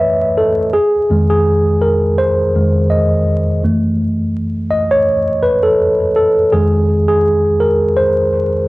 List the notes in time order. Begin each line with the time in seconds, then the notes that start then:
Already playing: F#2 E3 A3 B4 C#5 D#5 E5
0.37 A4
0.73 G#4
1.10 F2 D#3 G#3
1.30 G#4
1.81 A#4
2.18 C5
2.55 F2 D#3 G#3
2.90 D#5
3.63 F#2 E3 A3
4.71 D#5
4.91 C#5
5.43 B4
5.63 A4
6.16 A4
6.52 F2 D#3 G#3 G#4
7.08 G#4
7.60 A#4
7.97 C5